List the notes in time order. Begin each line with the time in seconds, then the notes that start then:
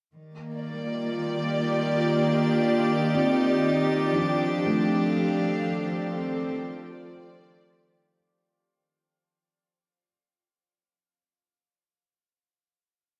0.13 D#3 G4 D5 D6
0.36 A#3
0.59 D5
0.67 G3
0.83 F4
1.33 G4
2.15 D4
3.15 C4 D#4
4.14 F3 D4 F4
4.25 C4
4.66 A3
5.04 A4 F5
5.15 G4
6.17 C4
6.51 F4
6.76 C5
6.95 D5
7.15 G5